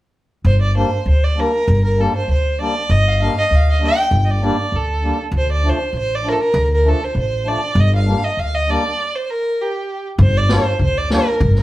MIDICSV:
0, 0, Header, 1, 5, 480
1, 0, Start_track
1, 0, Key_signature, -2, "minor"
1, 0, Tempo, 609756
1, 350, Time_signature, 2, 2, 24, 8
1, 9152, End_track
2, 0, Start_track
2, 0, Title_t, "Violin"
2, 0, Program_c, 0, 40
2, 363, Note_on_c, 0, 72, 84
2, 468, Note_off_c, 0, 72, 0
2, 486, Note_on_c, 0, 74, 74
2, 590, Note_off_c, 0, 74, 0
2, 607, Note_on_c, 0, 72, 74
2, 822, Note_off_c, 0, 72, 0
2, 856, Note_on_c, 0, 72, 78
2, 975, Note_on_c, 0, 74, 74
2, 987, Note_off_c, 0, 72, 0
2, 1102, Note_on_c, 0, 70, 88
2, 1114, Note_off_c, 0, 74, 0
2, 1446, Note_off_c, 0, 70, 0
2, 1452, Note_on_c, 0, 70, 69
2, 1577, Note_on_c, 0, 69, 75
2, 1589, Note_off_c, 0, 70, 0
2, 1684, Note_off_c, 0, 69, 0
2, 1700, Note_on_c, 0, 72, 82
2, 1798, Note_off_c, 0, 72, 0
2, 1821, Note_on_c, 0, 72, 78
2, 2030, Note_off_c, 0, 72, 0
2, 2054, Note_on_c, 0, 74, 84
2, 2292, Note_on_c, 0, 75, 91
2, 2303, Note_off_c, 0, 74, 0
2, 2424, Note_on_c, 0, 77, 74
2, 2436, Note_off_c, 0, 75, 0
2, 2451, Note_on_c, 0, 75, 68
2, 2463, Note_off_c, 0, 77, 0
2, 2521, Note_on_c, 0, 77, 77
2, 2533, Note_off_c, 0, 75, 0
2, 2667, Note_on_c, 0, 75, 87
2, 2679, Note_off_c, 0, 77, 0
2, 2770, Note_off_c, 0, 75, 0
2, 2794, Note_on_c, 0, 77, 80
2, 2919, Note_on_c, 0, 75, 75
2, 2930, Note_off_c, 0, 77, 0
2, 3015, Note_off_c, 0, 75, 0
2, 3029, Note_on_c, 0, 79, 94
2, 3319, Note_off_c, 0, 79, 0
2, 3344, Note_on_c, 0, 75, 54
2, 3390, Note_on_c, 0, 74, 74
2, 3401, Note_off_c, 0, 75, 0
2, 3491, Note_off_c, 0, 74, 0
2, 3508, Note_on_c, 0, 74, 74
2, 3746, Note_on_c, 0, 69, 76
2, 3758, Note_off_c, 0, 74, 0
2, 4090, Note_off_c, 0, 69, 0
2, 4232, Note_on_c, 0, 72, 88
2, 4326, Note_off_c, 0, 72, 0
2, 4346, Note_on_c, 0, 74, 81
2, 4481, Note_on_c, 0, 72, 86
2, 4492, Note_off_c, 0, 74, 0
2, 4697, Note_off_c, 0, 72, 0
2, 4714, Note_on_c, 0, 72, 86
2, 4840, Note_on_c, 0, 74, 81
2, 4852, Note_off_c, 0, 72, 0
2, 4949, Note_on_c, 0, 70, 84
2, 4961, Note_off_c, 0, 74, 0
2, 4977, Note_on_c, 0, 69, 65
2, 4989, Note_off_c, 0, 70, 0
2, 5043, Note_on_c, 0, 70, 90
2, 5055, Note_off_c, 0, 69, 0
2, 5283, Note_off_c, 0, 70, 0
2, 5308, Note_on_c, 0, 70, 68
2, 5421, Note_on_c, 0, 69, 77
2, 5433, Note_off_c, 0, 70, 0
2, 5544, Note_on_c, 0, 72, 79
2, 5556, Note_off_c, 0, 69, 0
2, 5649, Note_off_c, 0, 72, 0
2, 5664, Note_on_c, 0, 72, 77
2, 5889, Note_on_c, 0, 74, 82
2, 5900, Note_off_c, 0, 72, 0
2, 6141, Note_on_c, 0, 75, 87
2, 6153, Note_off_c, 0, 74, 0
2, 6247, Note_off_c, 0, 75, 0
2, 6263, Note_on_c, 0, 77, 74
2, 6487, Note_on_c, 0, 75, 74
2, 6499, Note_off_c, 0, 77, 0
2, 6606, Note_on_c, 0, 77, 85
2, 6618, Note_off_c, 0, 75, 0
2, 6729, Note_on_c, 0, 75, 82
2, 6740, Note_off_c, 0, 77, 0
2, 6848, Note_on_c, 0, 74, 87
2, 6860, Note_off_c, 0, 75, 0
2, 7206, Note_on_c, 0, 72, 74
2, 7217, Note_off_c, 0, 74, 0
2, 7322, Note_on_c, 0, 70, 78
2, 7334, Note_off_c, 0, 72, 0
2, 7566, Note_on_c, 0, 67, 70
2, 7578, Note_off_c, 0, 70, 0
2, 7919, Note_off_c, 0, 67, 0
2, 8047, Note_on_c, 0, 72, 88
2, 8168, Note_on_c, 0, 74, 83
2, 8180, Note_off_c, 0, 72, 0
2, 8289, Note_on_c, 0, 72, 80
2, 8301, Note_off_c, 0, 74, 0
2, 8519, Note_off_c, 0, 72, 0
2, 8530, Note_on_c, 0, 72, 77
2, 8642, Note_on_c, 0, 74, 77
2, 8654, Note_off_c, 0, 72, 0
2, 8753, Note_off_c, 0, 74, 0
2, 8758, Note_on_c, 0, 70, 89
2, 9088, Note_off_c, 0, 70, 0
2, 9127, Note_on_c, 0, 70, 62
2, 9152, Note_off_c, 0, 70, 0
2, 9152, End_track
3, 0, Start_track
3, 0, Title_t, "Accordion"
3, 0, Program_c, 1, 21
3, 584, Note_on_c, 1, 55, 61
3, 589, Note_on_c, 1, 58, 55
3, 597, Note_on_c, 1, 62, 75
3, 707, Note_off_c, 1, 55, 0
3, 709, Note_off_c, 1, 58, 0
3, 714, Note_off_c, 1, 62, 0
3, 1065, Note_on_c, 1, 55, 48
3, 1074, Note_on_c, 1, 58, 49
3, 1078, Note_on_c, 1, 62, 66
3, 1188, Note_off_c, 1, 55, 0
3, 1192, Note_off_c, 1, 58, 0
3, 1194, Note_off_c, 1, 62, 0
3, 1550, Note_on_c, 1, 55, 62
3, 1560, Note_on_c, 1, 58, 61
3, 1563, Note_on_c, 1, 62, 74
3, 1671, Note_off_c, 1, 55, 0
3, 1675, Note_off_c, 1, 58, 0
3, 1677, Note_off_c, 1, 62, 0
3, 2040, Note_on_c, 1, 55, 53
3, 2046, Note_on_c, 1, 58, 53
3, 2053, Note_on_c, 1, 62, 65
3, 2156, Note_off_c, 1, 55, 0
3, 2159, Note_off_c, 1, 58, 0
3, 2162, Note_off_c, 1, 62, 0
3, 2510, Note_on_c, 1, 55, 66
3, 2520, Note_on_c, 1, 58, 59
3, 2526, Note_on_c, 1, 62, 72
3, 2631, Note_off_c, 1, 55, 0
3, 2636, Note_off_c, 1, 58, 0
3, 2639, Note_off_c, 1, 62, 0
3, 2983, Note_on_c, 1, 55, 60
3, 2994, Note_on_c, 1, 58, 55
3, 2998, Note_on_c, 1, 62, 62
3, 3108, Note_off_c, 1, 55, 0
3, 3113, Note_off_c, 1, 58, 0
3, 3115, Note_off_c, 1, 62, 0
3, 3468, Note_on_c, 1, 55, 64
3, 3473, Note_on_c, 1, 58, 53
3, 3481, Note_on_c, 1, 62, 78
3, 3590, Note_off_c, 1, 55, 0
3, 3593, Note_off_c, 1, 58, 0
3, 3597, Note_off_c, 1, 62, 0
3, 3948, Note_on_c, 1, 55, 47
3, 3958, Note_on_c, 1, 58, 51
3, 3966, Note_on_c, 1, 62, 58
3, 4071, Note_off_c, 1, 55, 0
3, 4076, Note_off_c, 1, 58, 0
3, 4079, Note_off_c, 1, 62, 0
3, 4425, Note_on_c, 1, 53, 59
3, 4432, Note_on_c, 1, 57, 58
3, 4436, Note_on_c, 1, 62, 68
3, 4549, Note_off_c, 1, 53, 0
3, 4553, Note_off_c, 1, 57, 0
3, 4555, Note_off_c, 1, 62, 0
3, 4898, Note_on_c, 1, 53, 59
3, 4909, Note_on_c, 1, 57, 56
3, 4914, Note_on_c, 1, 62, 62
3, 5026, Note_off_c, 1, 53, 0
3, 5031, Note_off_c, 1, 57, 0
3, 5034, Note_off_c, 1, 62, 0
3, 5375, Note_on_c, 1, 53, 63
3, 5384, Note_on_c, 1, 57, 52
3, 5388, Note_on_c, 1, 62, 63
3, 5504, Note_off_c, 1, 53, 0
3, 5509, Note_off_c, 1, 57, 0
3, 5511, Note_off_c, 1, 62, 0
3, 5856, Note_on_c, 1, 53, 55
3, 5865, Note_on_c, 1, 57, 49
3, 5865, Note_on_c, 1, 62, 64
3, 5985, Note_off_c, 1, 53, 0
3, 5989, Note_off_c, 1, 57, 0
3, 5989, Note_off_c, 1, 62, 0
3, 6338, Note_on_c, 1, 55, 57
3, 6341, Note_on_c, 1, 58, 63
3, 6349, Note_on_c, 1, 62, 67
3, 6466, Note_off_c, 1, 55, 0
3, 6467, Note_off_c, 1, 58, 0
3, 6471, Note_off_c, 1, 62, 0
3, 6828, Note_on_c, 1, 55, 54
3, 6835, Note_on_c, 1, 58, 59
3, 6843, Note_on_c, 1, 62, 68
3, 6950, Note_off_c, 1, 55, 0
3, 6954, Note_off_c, 1, 58, 0
3, 6958, Note_off_c, 1, 62, 0
3, 8267, Note_on_c, 1, 55, 64
3, 8272, Note_on_c, 1, 58, 58
3, 8276, Note_on_c, 1, 62, 78
3, 8389, Note_off_c, 1, 55, 0
3, 8391, Note_off_c, 1, 58, 0
3, 8393, Note_off_c, 1, 62, 0
3, 8740, Note_on_c, 1, 55, 63
3, 8751, Note_on_c, 1, 58, 52
3, 8753, Note_on_c, 1, 62, 75
3, 8865, Note_off_c, 1, 55, 0
3, 8870, Note_off_c, 1, 58, 0
3, 8871, Note_off_c, 1, 62, 0
3, 9152, End_track
4, 0, Start_track
4, 0, Title_t, "Upright bass"
4, 0, Program_c, 2, 32
4, 350, Note_on_c, 2, 31, 93
4, 638, Note_off_c, 2, 31, 0
4, 832, Note_on_c, 2, 38, 78
4, 1119, Note_off_c, 2, 38, 0
4, 1319, Note_on_c, 2, 31, 95
4, 1605, Note_off_c, 2, 31, 0
4, 1793, Note_on_c, 2, 38, 67
4, 2081, Note_off_c, 2, 38, 0
4, 2278, Note_on_c, 2, 31, 92
4, 2564, Note_off_c, 2, 31, 0
4, 2761, Note_on_c, 2, 38, 75
4, 3047, Note_off_c, 2, 38, 0
4, 3235, Note_on_c, 2, 31, 90
4, 3523, Note_off_c, 2, 31, 0
4, 3717, Note_on_c, 2, 38, 74
4, 4004, Note_off_c, 2, 38, 0
4, 4184, Note_on_c, 2, 38, 97
4, 4475, Note_off_c, 2, 38, 0
4, 4666, Note_on_c, 2, 33, 70
4, 4956, Note_off_c, 2, 33, 0
4, 5146, Note_on_c, 2, 38, 104
4, 5436, Note_off_c, 2, 38, 0
4, 5627, Note_on_c, 2, 33, 78
4, 5917, Note_off_c, 2, 33, 0
4, 6102, Note_on_c, 2, 31, 102
4, 6393, Note_off_c, 2, 31, 0
4, 6589, Note_on_c, 2, 38, 62
4, 6878, Note_off_c, 2, 38, 0
4, 8017, Note_on_c, 2, 31, 100
4, 8309, Note_off_c, 2, 31, 0
4, 8496, Note_on_c, 2, 38, 72
4, 8787, Note_off_c, 2, 38, 0
4, 8979, Note_on_c, 2, 31, 101
4, 9152, Note_off_c, 2, 31, 0
4, 9152, End_track
5, 0, Start_track
5, 0, Title_t, "Drums"
5, 8020, Note_on_c, 9, 36, 90
5, 8099, Note_off_c, 9, 36, 0
5, 8259, Note_on_c, 9, 38, 79
5, 8338, Note_off_c, 9, 38, 0
5, 8498, Note_on_c, 9, 36, 57
5, 8576, Note_off_c, 9, 36, 0
5, 8740, Note_on_c, 9, 38, 67
5, 8819, Note_off_c, 9, 38, 0
5, 8978, Note_on_c, 9, 36, 81
5, 9057, Note_off_c, 9, 36, 0
5, 9098, Note_on_c, 9, 38, 27
5, 9152, Note_off_c, 9, 38, 0
5, 9152, End_track
0, 0, End_of_file